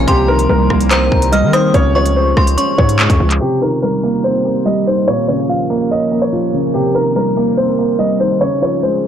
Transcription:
Already playing: ambient pad A#3
0.07 808-style bass C2, grand piano C3, ambient pad D#3 C4 G4, upright piano G4, synth bell C6, kick, closed hi-hat
0.28 grand piano D#3, upright piano A#4
0.39 closed hi-hat
0.49 808-style bass C2, grand piano G3, upright piano A#4
0.70 808-style bass C2, grand piano A#3, kick, cross-stick
0.81 closed hi-hat
0.91 grand piano C4, upright piano C5, synth bell A#5, clap, closed hi-hat
1.12 808-style bass C2, grand piano A#3, kick
1.22 closed hi-hat
1.32 grand piano G3, upright piano D#5, synth bell F6, closed hi-hat
1.43 808-style bass D#3
1.53 grand piano D#3, upright piano C5, synth bell D#6, cross-stick, closed hi-hat
1.74 808-style bass C#2, grand piano C#3, ambient pad C#3 G#3 C#4 F4, upright piano C#5, kick, closed hi-hat
1.95 grand piano F3, upright piano C#5, synth bell C#6
2.06 closed hi-hat
2.16 grand piano G#3, upright piano C5
2.37 808-style bass C#2, synth bell C6, kick, cross-stick
2.47 closed hi-hat
2.58 grand piano C#4, synth bell C#6, closed hi-hat
2.78 808-style bass G#2, upright piano C#5, kick
2.89 closed hi-hat
2.99 grand piano G#3, clap, closed hi-hat
3.10 808-style bass F2, kick, closed hi-hat
3.20 808-style bass C#2, grand piano F3
3.31 clap, closed hi-hat
3.41 grand piano C3, ambient pad D#3 A#3 C4 G4, upright piano G4
3.62 grand piano D#3, upright piano A#4
3.83 grand piano G3, upright piano A#4
4.03 grand piano A#3
4.24 grand piano C4, upright piano C5
4.45 grand piano A#3
4.66 grand piano G3, upright piano D#5
4.87 grand piano D#3, upright piano C5
5.07 grand piano A#2, ambient pad F3 C#4 A#4, upright piano C#5
5.28 grand piano C#3, upright piano C#5
5.49 grand piano F3, upright piano F5
5.70 grand piano A#3
5.91 grand piano C#4, upright piano D#5
6.12 grand piano A#3
6.22 upright piano C#5
6.33 grand piano F3
6.53 grand piano C#3
6.74 grand piano C3, ambient pad G3 C4 D#4, upright piano G4
6.95 grand piano D#3, upright piano A#4
7.16 grand piano G3, upright piano A#4
7.37 grand piano A#3
7.57 grand piano C4, upright piano C5
7.79 grand piano A#3
7.99 grand piano G3, upright piano D#5
8.20 grand piano D#3, upright piano C5
8.41 grand piano C#3, ambient pad G#3 C#4 F4 G#4, upright piano C#5
8.62 grand piano F3, upright piano C#5
8.83 grand piano G#3, upright piano C5

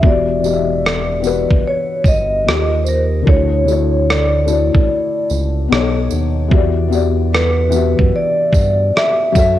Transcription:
0.01 analog synth bass E1, felt piano E3 B3 F#4, kick
0.06 felt piano G4 D5, vibraphone D5
0.39 felt piano E3 B3 F#4
0.44 felt piano G4 D#5, tambourine
0.53 felt piano E5
0.86 cross-stick
1.20 felt piano E3 B3 F#4, tambourine
1.25 felt piano G4 B4
1.51 analog synth bass F#1, kick
1.68 vibraphone C#5
2.04 analog synth bass G1, vibraphone D#5, kick, tambourine
2.44 analog synth bass D#2, felt piano D#3 A#3 F4
2.49 felt piano G4 D#5, cross-stick
2.84 vibraphone C5, tambourine
2.89 vibraphone A#4
3.22 felt piano D3 A3 E4
3.27 analog synth bass D2, felt piano F#4 C#5, vibraphone C#5, kick
3.65 felt piano D3 A3 E4, tambourine
3.70 felt piano F#4 C#5
4.10 vibraphone D5, cross-stick
4.44 felt piano A3 D4 E4, tambourine
4.49 felt piano F#4 D5
4.75 analog synth bass A1, kick
5.30 analog synth bass C#2, tambourine
5.68 analog synth bass B1, felt piano B2 B3 D#4
5.73 felt piano A4 C#5, cross-stick
6.11 analog synth bass D#2, tambourine
6.48 analog synth bass E2, felt piano E3 B3 F#4, kick
6.53 felt piano G4 D5
6.88 felt piano E3 B3 F#4
6.92 felt piano G4 D5, tambourine
7.34 vibraphone B4, cross-stick
7.69 felt piano E3 B3 F#4, tambourine
7.74 felt piano G4 E5
7.99 analog synth bass F#2, kick
8.16 vibraphone D5
8.53 analog synth bass G2, kick, tambourine
8.97 vibraphone E5, cross-stick
9.32 felt piano F#3 F#4 A4, kick, tambourine
9.36 analog synth bass F#2, felt piano C#5 E5

